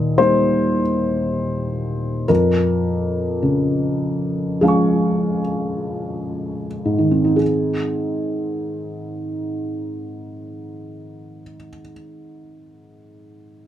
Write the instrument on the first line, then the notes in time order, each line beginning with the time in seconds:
felt piano
Already playing: D#2 A#2 D#5
0.18 G3 A#3 D#4 C5
2.28 F2 A#4
3.42 C#3
4.61 F3 G#3 C#4 G#4 F5 G#5
4.68 C#6
6.85 G#2
6.99 D#3
7.11 C4
7.25 D#4
7.36 G#4